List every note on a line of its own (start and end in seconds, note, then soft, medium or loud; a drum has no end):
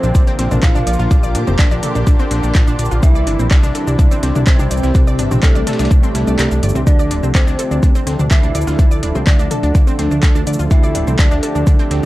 0.00 0.12 A#1 medium
0.00 2.99 D3 medium
0.00 2.99 F3 medium
0.00 2.99 A#3 medium
0.00 0.64 C4 loud
0.00 0.73 D4 medium
0.00 1.07 D4 loud
0.00 0.11 D4 medium
0.00 4.39 A#4 medium
0.00 0.63 C5 medium
0.00 0.11 D5 medium
0.00 4.22 D6 medium
0.00 shaker soft
0.15 0.25 A#1 loud
0.15 0.20 D4 medium
0.15 0.20 D5 medium
0.15 kick loud
0.15 closed hi-hat medium
0.15 shaker medium
0.27 0.32 C4 loud
0.27 0.32 C5 medium
0.27 closed hi-hat soft
0.27 shaker soft
0.39 0.49 A#1 medium
0.39 0.47 C4 medium
0.39 0.47 C5 medium
0.39 snare soft
0.39 closed hi-hat loud
0.39 closed hi-hat medium
0.51 0.60 A#1 medium
0.51 0.59 D4 medium
0.51 0.59 D5 medium
0.51 mid tom medium
0.51 shaker soft
0.57 4.57 C6 medium
0.63 0.73 A#1 loud
0.63 0.71 D4 medium
0.63 1.50 F4 loud
0.63 0.71 D5 medium
0.63 1.50 F5 loud
0.63 kick loud
0.63 snare loud
0.63 clap loud
0.63 closed hi-hat medium
0.63 shaker medium
0.75 0.84 A#1 medium
0.75 0.83 D4 loud
0.75 0.83 D5 medium
0.75 mid tom medium
0.75 shaker soft
0.87 0.97 A#1 medium
0.87 0.95 D5 medium
0.87 0.95 D6 medium
0.87 closed hi-hat loud
0.87 closed hi-hat medium
0.87 shaker soft
0.93 shaker medium
0.99 1.08 A#1 medium
0.99 1.10 F4 medium
0.99 1.10 F5 medium
0.99 snare soft
0.99 shaker soft
1.11 1.37 A#1 loud
1.11 1.16 D4 medium
1.11 3.01 G4 medium
1.11 1.16 D5 medium
1.11 kick loud
1.11 closed hi-hat medium
1.11 shaker medium
1.23 1.28 D5 loud
1.23 1.28 D6 medium
1.23 shaker soft
1.35 1.45 A#2 medium
1.35 1.43 D4 medium
1.35 1.43 D5 medium
1.35 closed hi-hat loud
1.35 closed hi-hat medium
1.47 1.56 F1 medium
1.47 1.58 C4 medium
1.47 1.58 C5 medium
1.47 mid tom loud
1.47 shaker soft
1.59 1.69 A#1 loud
1.59 3.04 D4 loud
1.59 1.67 D4 medium
1.59 3.03 D5 medium
1.59 1.67 D5 medium
1.59 kick loud
1.59 snare loud
1.59 clap loud
1.59 closed hi-hat medium
1.59 shaker soft
1.71 1.80 A#1 medium
1.71 1.79 D4 loud
1.71 1.79 D5 medium
1.71 closed hi-hat soft
1.71 shaker soft
1.83 1.91 A4 medium
1.83 1.91 A5 medium
1.83 closed hi-hat loud
1.83 closed hi-hat medium
1.83 mid tom medium
1.83 shaker soft
1.95 2.04 A#1 medium
1.95 2.03 D4 medium
1.95 2.03 D5 medium
1.95 closed hi-hat soft
1.95 shaker soft
2.07 2.17 A#1 loud
2.07 2.12 D4 medium
2.07 2.12 D5 medium
2.07 kick loud
2.07 closed hi-hat medium
2.07 shaker medium
2.19 2.24 C4 loud
2.19 2.24 C5 medium
2.19 shaker soft
2.31 2.41 A#1 medium
2.31 2.39 C4 medium
2.31 2.39 C5 medium
2.31 snare soft
2.31 closed hi-hat loud
2.31 closed hi-hat medium
2.43 2.52 A#1 medium
2.43 2.51 D4 medium
2.43 2.51 D5 medium
2.43 shaker soft
2.55 2.65 A#1 loud
2.55 2.63 D4 medium
2.55 2.63 D5 medium
2.55 kick loud
2.55 snare loud
2.55 clap loud
2.55 closed hi-hat medium
2.55 shaker medium
2.67 2.76 A#1 medium
2.67 2.75 D4 loud
2.67 2.75 D5 medium
2.67 shaker soft
2.79 2.89 A#1 medium
2.79 2.87 D5 medium
2.79 2.87 D6 medium
2.79 closed hi-hat medium
2.79 closed hi-hat loud
2.79 shaker soft
2.85 shaker medium
2.91 3.00 A#1 medium
2.91 3.02 F4 medium
2.91 3.02 F5 medium
2.91 shaker soft
3.03 3.28 C2 loud
3.03 6.83 C3 medium
3.03 6.83 E3 medium
3.03 6.83 G3 medium
3.03 8.24 C4 medium
3.03 3.08 D4 medium
3.03 3.47 E4 loud
3.03 4.93 E4 medium
3.03 3.08 D5 medium
3.03 3.47 E5 loud
3.03 kick loud
3.03 closed hi-hat medium
3.03 shaker medium
3.15 3.20 D5 loud
3.15 3.20 D6 medium
3.15 shaker soft
3.26 3.37 G1 loud
3.26 3.35 D4 medium
3.26 8.02 D5 medium
3.26 3.35 D5 medium
3.26 closed hi-hat medium
3.26 closed hi-hat loud
3.39 3.48 A#1 medium
3.39 3.50 C4 medium
3.39 3.50 C5 medium
3.39 shaker soft
3.51 3.61 C2 loud
3.51 3.59 D4 medium
3.51 4.48 D4 loud
3.51 4.47 D5 medium
3.51 3.59 D5 medium
3.51 kick loud
3.51 snare loud
3.51 clap loud
3.51 closed hi-hat medium
3.51 shaker soft
3.63 3.72 C2 medium
3.63 3.71 D4 loud
3.63 3.71 D5 medium
3.63 snare medium
3.63 shaker soft
3.70 8.17 G4 medium
3.75 3.83 A4 medium
3.75 3.83 A5 medium
3.75 closed hi-hat medium
3.75 closed hi-hat loud
3.75 shaker soft
3.87 3.96 C2 medium
3.87 3.95 D4 medium
3.87 3.95 D5 medium
3.87 shaker soft
3.99 4.09 C2 loud
3.99 4.04 D4 medium
3.99 4.04 D5 medium
3.99 kick loud
3.99 closed hi-hat medium
3.99 shaker medium
4.11 4.16 C4 loud
4.11 4.16 C5 medium
4.11 closed hi-hat soft
4.11 shaker soft
4.16 6.87 E5 medium
4.23 4.33 C2 medium
4.23 4.31 C4 medium
4.23 4.31 C5 medium
4.23 snare soft
4.23 closed hi-hat medium
4.23 closed hi-hat loud
4.35 4.44 C2 medium
4.35 4.43 D4 medium
4.35 4.43 D5 medium
4.35 mid tom medium
4.35 shaker soft
4.47 4.57 C2 loud
4.47 5.34 C4 loud
4.47 4.55 D4 medium
4.47 5.34 C5 loud
4.47 4.55 D5 medium
4.47 kick loud
4.47 snare loud
4.47 clap loud
4.47 closed hi-hat medium
4.47 shaker medium
4.59 4.68 C2 medium
4.59 4.67 D4 loud
4.59 4.67 D5 medium
4.59 mid tom medium
4.59 shaker soft
4.71 4.81 C2 medium
4.71 4.79 D5 medium
4.71 4.79 D6 medium
4.71 closed hi-hat medium
4.71 closed hi-hat loud
4.71 shaker soft
4.77 shaker medium
4.83 4.92 C2 medium
4.83 4.94 E4 medium
4.83 4.94 E5 medium
4.83 snare medium
4.83 shaker soft
4.95 5.20 C2 loud
4.95 5.00 D4 medium
4.95 6.85 D4 loud
4.95 5.00 D5 medium
4.95 kick loud
4.95 closed hi-hat medium
4.95 shaker medium
5.07 5.12 D5 loud
5.07 5.12 D6 medium
5.07 shaker soft
5.19 5.29 G1 loud
5.19 5.27 D4 medium
5.19 5.27 D5 medium
5.19 closed hi-hat loud
5.19 closed hi-hat medium
5.19 shaker soft
5.31 5.40 A#1 medium
5.31 5.42 C4 medium
5.31 5.42 C5 medium
5.31 mid tom loud
5.31 shaker soft
5.43 5.53 C2 loud
5.43 6.78 A3 loud
5.43 5.51 D4 medium
5.43 6.78 A4 medium
5.43 5.51 D5 medium
5.43 kick loud
5.43 snare loud
5.43 clap loud
5.43 closed hi-hat medium
5.43 shaker medium
5.55 5.64 C2 medium
5.55 5.63 D4 loud
5.55 5.63 D5 medium
5.55 closed hi-hat soft
5.55 shaker soft
5.67 5.75 A4 medium
5.67 5.75 A5 medium
5.67 snare medium
5.67 closed hi-hat medium
5.67 closed hi-hat loud
5.67 mid tom medium
5.67 shaker soft
5.73 snare medium
5.73 closed hi-hat medium
5.79 5.88 C2 medium
5.79 5.87 D4 medium
5.79 5.87 D5 medium
5.79 snare medium
5.79 closed hi-hat medium
5.79 shaker soft
5.85 snare medium
5.85 closed hi-hat medium
5.91 6.01 C2 loud
5.91 5.96 D4 medium
5.91 5.96 D5 medium
5.91 kick loud
5.91 shaker medium
6.03 6.08 C4 loud
6.03 6.08 C5 medium
6.03 shaker soft
6.15 6.25 C2 medium
6.15 6.20 E4 medium
6.15 6.20 E5 medium
6.15 snare soft
6.15 closed hi-hat medium
6.15 closed hi-hat loud
6.15 shaker soft
6.27 6.36 C2 medium
6.27 6.35 D5 medium
6.27 6.35 D6 medium
6.27 shaker soft
6.39 6.49 C2 loud
6.39 6.44 A#4 medium
6.39 6.44 A#5 medium
6.39 snare loud
6.39 clap loud
6.39 closed hi-hat medium
6.39 shaker medium
6.51 6.60 C2 medium
6.51 6.59 D4 medium
6.51 6.59 D5 medium
6.51 shaker soft
6.63 6.73 G1 loud
6.63 6.75 D5 medium
6.63 6.75 D6 medium
6.63 closed hi-hat medium
6.63 closed hi-hat loud
6.63 shaker soft
6.69 shaker medium
6.75 6.84 C2 medium
6.75 6.86 C4 medium
6.75 6.86 C5 medium
6.75 mid tom medium
6.75 shaker soft
6.87 7.12 D2 loud
6.87 12.05 D3 medium
6.87 12.05 F3 medium
6.87 12.05 A3 medium
6.87 7.31 D4 loud
6.87 6.92 D4 medium
6.87 10.67 D4 medium
6.87 12.05 D4 medium
6.87 7.31 D5 loud
6.87 6.92 D5 medium
6.87 kick loud
6.87 closed hi-hat medium
6.87 shaker medium
6.99 12.05 A4 medium
6.99 7.04 D5 loud
6.99 7.04 D6 medium
6.99 shaker soft
7.11 7.21 D1 medium
7.11 7.19 D4 medium
7.11 7.19 D5 medium
7.11 closed hi-hat medium
7.11 closed hi-hat loud
7.23 7.32 C2 medium
7.23 7.34 C4 medium
7.23 7.34 C5 medium
7.23 shaker soft
7.35 7.45 D2 loud
7.35 8.22 C4 loud
7.35 7.43 D4 medium
7.35 8.22 C5 medium
7.35 7.43 D5 medium
7.35 kick loud
7.35 snare loud
7.35 clap loud
7.35 closed hi-hat medium
7.35 shaker soft
7.47 7.56 D2 medium
7.47 7.55 D4 loud
7.47 7.55 D5 medium
7.47 snare soft
7.47 shaker soft
7.59 7.67 A4 medium
7.59 7.67 A5 medium
7.59 closed hi-hat medium
7.59 closed hi-hat loud
7.59 shaker soft
7.71 7.80 D2 medium
7.71 7.79 D4 medium
7.71 7.79 D5 medium
7.71 shaker soft
7.83 7.93 D2 medium
7.83 7.88 D4 medium
7.83 7.88 D5 medium
7.83 kick loud
7.83 closed hi-hat medium
7.83 shaker medium
7.95 8.00 C4 loud
7.95 8.00 C5 medium
7.95 closed hi-hat soft
7.95 shaker soft
8.07 8.17 D2 medium
8.07 8.15 C4 medium
8.07 8.15 C5 medium
8.07 snare soft
8.07 closed hi-hat loud
8.07 closed hi-hat medium
8.19 8.28 D2 medium
8.19 8.27 D4 medium
8.19 8.27 D5 medium
8.19 mid tom medium
8.19 shaker soft
8.31 8.41 D2 loud
8.31 8.39 D4 medium
8.31 9.18 E4 loud
8.31 8.39 D5 medium
8.31 9.18 E5 loud
8.31 kick loud
8.31 snare loud
8.31 clap loud
8.31 closed hi-hat medium
8.31 shaker medium
8.43 8.52 D2 medium
8.43 8.51 D4 loud
8.43 8.51 D5 medium
8.43 mid tom medium
8.43 shaker soft
8.55 8.65 D2 loud
8.55 8.63 D5 medium
8.55 8.63 D6 medium
8.55 closed hi-hat medium
8.55 closed hi-hat loud
8.55 shaker soft
8.61 shaker medium
8.67 8.76 D2 medium
8.67 8.78 F4 medium
8.67 8.78 F5 medium
8.67 snare soft
8.67 shaker soft
8.79 9.04 D2 loud
8.79 8.84 D4 medium
8.79 8.84 D5 medium
8.79 kick loud
8.79 closed hi-hat medium
8.79 shaker medium
8.91 8.96 D5 loud
8.91 8.96 D6 medium
8.91 shaker soft
9.03 9.13 D1 medium
9.03 9.11 D4 medium
9.03 9.11 D5 medium
9.03 closed hi-hat medium
9.03 closed hi-hat loud
9.15 9.24 C2 medium
9.15 9.26 C4 medium
9.15 9.26 C5 medium
9.15 mid tom medium
9.15 shaker soft
9.27 9.37 D2 loud
9.27 9.35 D4 medium
9.27 10.62 D4 loud
9.27 10.62 D5 medium
9.27 9.35 D5 medium
9.27 kick loud
9.27 snare loud
9.27 clap loud
9.27 closed hi-hat medium
9.27 shaker soft
9.39 9.48 D2 medium
9.39 9.47 D4 loud
9.39 9.47 D5 medium
9.39 closed hi-hat soft
9.39 shaker soft
9.51 9.59 A4 medium
9.51 9.59 A5 medium
9.51 closed hi-hat medium
9.51 closed hi-hat loud
9.51 mid tom medium
9.51 shaker soft
9.63 9.72 D2 medium
9.63 9.71 D4 medium
9.63 9.71 D5 medium
9.63 closed hi-hat soft
9.63 shaker soft
9.75 9.85 D2 loud
9.75 9.80 D4 medium
9.75 9.80 D5 medium
9.75 kick loud
9.75 closed hi-hat medium
9.75 shaker medium
9.87 9.92 C4 loud
9.87 9.92 C5 medium
9.87 shaker soft
9.99 10.09 D2 loud
9.99 10.07 C4 medium
9.99 10.07 C5 medium
9.99 snare soft
9.99 closed hi-hat medium
9.99 closed hi-hat loud
10.11 10.20 D2 medium
10.11 10.19 D4 medium
10.11 10.19 D5 medium
10.11 shaker soft
10.23 10.33 D2 loud
10.23 10.31 D4 medium
10.23 10.31 D5 medium
10.23 kick loud
10.23 snare loud
10.23 clap loud
10.23 closed hi-hat medium
10.23 shaker medium
10.35 10.44 D2 medium
10.35 10.43 D4 loud
10.35 10.43 D5 medium
10.35 shaker soft
10.47 10.57 D2 loud
10.47 10.55 D5 medium
10.47 10.55 D6 medium
10.47 closed hi-hat medium
10.47 closed hi-hat loud
10.47 shaker soft
10.53 shaker medium
10.59 10.68 D2 medium
10.59 10.70 F4 medium
10.59 10.70 F5 medium
10.59 shaker soft
10.71 10.96 D2 loud
10.71 10.76 D4 medium
10.71 11.15 E4 loud
10.71 12.05 G4 medium
10.71 10.76 D5 medium
10.71 11.15 E5 loud
10.71 kick loud
10.71 closed hi-hat medium
10.71 shaker medium
10.83 10.88 D5 loud
10.83 10.88 D6 medium
10.83 shaker soft
10.95 11.05 D1 medium
10.95 11.03 D4 medium
10.95 11.03 D5 medium
10.95 closed hi-hat medium
10.95 closed hi-hat loud
11.07 11.16 C2 medium
11.07 11.18 C4 medium
11.07 11.18 C5 medium
11.07 shaker soft
11.19 11.29 D2 loud
11.19 11.27 D4 medium
11.19 12.05 D4 loud
11.19 11.27 D5 medium
11.19 12.05 D5 medium
11.19 kick loud
11.19 snare loud
11.19 clap loud
11.19 closed hi-hat medium
11.19 shaker soft
11.31 11.40 D2 medium
11.31 11.39 D4 loud
11.31 11.39 D5 medium
11.31 snare medium
11.31 shaker soft
11.43 11.51 A4 medium
11.43 11.51 A5 medium
11.43 closed hi-hat medium
11.43 closed hi-hat loud
11.43 shaker soft
11.55 11.64 D2 medium
11.55 11.63 D4 medium
11.55 11.63 D5 medium
11.55 shaker soft
11.67 11.77 D2 loud
11.67 11.72 D4 medium
11.67 11.72 D5 medium
11.67 kick loud
11.67 closed hi-hat medium
11.67 shaker medium
11.79 11.84 C4 loud
11.79 11.84 C5 medium
11.79 closed hi-hat soft
11.79 shaker soft
11.91 12.01 D2 loud
11.91 11.99 C4 medium
11.91 11.99 C5 medium
11.91 snare soft
11.91 closed hi-hat medium
11.91 closed hi-hat loud